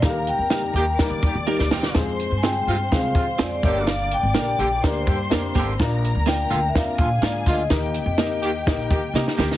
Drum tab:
HH |x-x-x-x-x-x-----|x-x-x-x-x-x-x-x-|x-x-x-x-x-x-x-x-|x-x-x-x-x-x-x-x-|
SD |o---o---o----ooo|o---o---o---o-o-|o---o---o---o-o-|o---o---o---o-o-|
BD |o-------o-o-----|o-------o-o---o-|--------o-o---o-|o-------o-o---o-|

HH |x-x-x-x-x-x-----|
SD |o---o---o---oooo|
BD |o-------o-o-----|